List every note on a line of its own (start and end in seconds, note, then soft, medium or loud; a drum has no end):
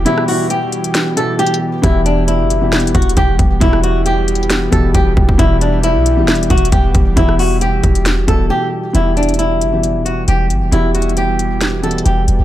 0.00 0.05 B2 loud
0.00 0.06 E3 medium
0.00 5.35 E3 medium
0.00 0.06 G3 medium
0.00 1.80 G3 medium
0.00 8.91 B3 medium
0.00 0.07 E4 medium
0.00 0.07 G4 loud
0.00 5.35 G4 medium
0.05 0.81 B2 loud
0.05 0.81 E3 medium
0.05 0.82 G3 medium
0.05 0.23 E4 medium
0.05 0.82 E4 loud
0.05 0.82 G4 loud
0.05 closed hi-hat medium
0.18 cross-stick loud
0.28 0.45 F#4 medium
0.28 open hi-hat medium
0.50 1.13 G4 medium
0.50 closed hi-hat medium
0.72 closed hi-hat medium
0.84 closed hi-hat medium
0.95 snare loud
0.95 closed hi-hat medium
1.16 1.74 B2 medium
1.16 1.74 E3 medium
1.16 1.74 G3 medium
1.16 1.74 E4 medium
1.16 1.75 G4 medium
1.16 1.34 A4 medium
1.16 closed hi-hat medium
1.39 1.56 G4 medium
1.39 closed hi-hat medium
1.47 closed hi-hat medium
1.54 closed hi-hat medium
1.82 2.41 E1 loud
1.82 2.49 B2 loud
1.82 2.49 E3 loud
1.82 2.49 G3 medium
1.82 8.91 G3 medium
1.82 2.01 E4 medium
1.82 2.50 E4 medium
1.82 2.50 G4 loud
1.82 kick loud
1.82 closed hi-hat medium
2.06 2.23 D4 medium
2.06 closed hi-hat medium
2.28 2.91 E4 medium
2.28 closed hi-hat medium
2.40 2.69 F#1 loud
2.50 closed hi-hat medium
2.61 3.36 B2 medium
2.61 3.37 E3 medium
2.61 3.37 G3 medium
2.61 3.37 E4 medium
2.61 3.38 G4 medium
2.67 2.93 E1 loud
2.72 snare loud
2.72 closed hi-hat soft
2.80 closed hi-hat soft
2.87 closed hi-hat medium
2.94 3.16 E1 loud
2.94 3.11 F#4 medium
2.94 kick medium
2.94 closed hi-hat medium
3.02 closed hi-hat medium
3.09 closed hi-hat medium
3.17 3.38 E1 loud
3.17 3.34 G4 medium
3.17 kick medium
3.17 closed hi-hat medium
3.39 3.60 E1 loud
3.39 kick loud
3.39 closed hi-hat medium
3.60 4.68 E1 loud
3.60 4.37 B2 loud
3.60 4.37 E3 medium
3.60 4.37 G3 medium
3.60 3.78 E4 medium
3.60 4.38 E4 medium
3.60 4.38 G4 loud
3.60 kick loud
3.60 closed hi-hat medium
3.73 cross-stick loud
3.83 4.00 F#4 medium
3.83 closed hi-hat medium
4.06 4.69 G4 medium
4.06 closed hi-hat medium
4.28 closed hi-hat medium
4.35 closed hi-hat medium
4.43 closed hi-hat soft
4.50 snare loud
4.50 closed hi-hat medium
4.71 4.94 E1 loud
4.71 5.29 B2 medium
4.71 5.29 E3 medium
4.71 5.29 G3 medium
4.71 5.30 E4 medium
4.71 5.30 G4 medium
4.71 4.89 A4 medium
4.71 kick loud
4.71 closed hi-hat medium
4.94 5.16 E1 loud
4.94 5.11 G4 medium
4.94 kick medium
4.94 closed hi-hat medium
5.17 5.38 E1 loud
5.17 kick loud
5.29 kick loud
5.38 5.97 E1 loud
5.38 6.04 B2 loud
5.38 6.05 E3 medium
5.38 8.91 E3 medium
5.38 6.05 G3 medium
5.38 5.56 E4 medium
5.38 6.05 E4 medium
5.38 8.91 G4 medium
5.38 6.05 G4 loud
5.38 kick loud
5.38 closed hi-hat medium
5.61 5.78 D4 medium
5.61 closed hi-hat medium
5.83 6.46 E4 medium
5.83 closed hi-hat medium
5.95 6.24 B1 loud
6.06 closed hi-hat medium
6.17 6.92 B2 medium
6.17 6.92 E3 medium
6.17 6.92 G3 medium
6.17 6.93 E4 medium
6.17 6.93 G4 medium
6.23 6.49 E1 loud
6.28 snare loud
6.28 closed hi-hat soft
6.35 closed hi-hat medium
6.43 closed hi-hat medium
6.50 6.72 E1 loud
6.50 6.67 F#4 medium
6.50 kick loud
6.50 closed hi-hat medium
6.58 closed hi-hat medium
6.65 closed hi-hat medium
6.72 6.94 E1 loud
6.72 6.89 G4 medium
6.72 kick medium
6.72 closed hi-hat medium
6.95 7.16 E1 loud
6.95 kick loud
6.95 closed hi-hat medium
7.16 7.81 E1 loud
7.16 7.92 B2 loud
7.16 7.93 E3 medium
7.16 7.93 G3 loud
7.16 7.34 E4 medium
7.16 7.93 E4 medium
7.16 7.93 G4 loud
7.16 kick loud
7.16 closed hi-hat medium
7.29 cross-stick medium
7.39 7.56 F#4 medium
7.39 open hi-hat medium
7.61 8.24 G4 medium
7.61 closed hi-hat medium
7.84 8.26 E1 loud
7.84 kick medium
7.84 closed hi-hat medium
7.95 closed hi-hat medium
8.06 snare loud
8.06 closed hi-hat medium
8.27 8.50 E1 loud
8.27 8.85 B2 medium
8.27 8.85 E3 medium
8.27 8.85 G3 medium
8.27 8.86 E4 medium
8.27 8.86 G4 medium
8.27 8.45 A4 medium
8.27 kick loud
8.27 closed hi-hat medium
8.50 8.67 G4 medium
8.93 9.63 E1 loud
8.93 9.60 B2 medium
8.93 9.60 E3 medium
8.93 12.45 E3 medium
8.93 9.60 G3 medium
8.93 12.45 G3 medium
8.93 12.45 B3 medium
8.93 9.61 E4 medium
8.93 9.12 E4 medium
8.93 12.45 G4 medium
8.93 9.61 G4 loud
8.93 closed hi-hat medium
9.17 9.34 D4 medium
9.17 closed hi-hat soft
9.23 closed hi-hat medium
9.29 closed hi-hat medium
9.34 closed hi-hat medium
9.39 10.02 E4 medium
9.39 closed hi-hat medium
9.61 9.97 F#1 loud
9.61 closed hi-hat medium
9.72 10.48 B2 medium
9.72 10.48 E3 medium
9.72 10.48 G3 medium
9.72 10.48 E4 medium
9.72 10.49 G4 medium
9.83 closed hi-hat medium
9.95 10.26 E1 loud
10.05 10.23 F#4 medium
10.05 closed hi-hat medium
10.28 10.52 E1 loud
10.28 10.45 G4 medium
10.28 closed hi-hat medium
10.50 10.63 G1 loud
10.50 closed hi-hat medium
10.62 10.72 E1 loud
10.72 12.02 E1 loud
10.72 11.48 B2 loud
10.72 11.48 E3 medium
10.72 11.48 G3 medium
10.72 10.90 E4 medium
10.72 11.49 E4 medium
10.72 11.49 G4 loud
10.72 closed hi-hat medium
10.95 11.12 F#4 medium
10.95 closed hi-hat medium
11.02 closed hi-hat soft
11.09 closed hi-hat soft
11.17 11.80 G4 medium
11.17 closed hi-hat medium
11.39 closed hi-hat medium
11.61 snare loud
11.61 closed hi-hat medium
11.82 12.40 B2 medium
11.82 12.40 E3 medium
11.82 12.41 G3 medium
11.82 12.41 E4 medium
11.82 12.41 G4 medium
11.82 12.00 A4 medium
11.82 closed hi-hat soft
11.91 closed hi-hat medium
11.98 closed hi-hat medium
12.06 12.27 E1 loud
12.06 12.23 G4 medium
12.06 closed hi-hat medium
12.28 12.39 E1 loud
12.28 closed hi-hat medium
12.40 12.45 E1 loud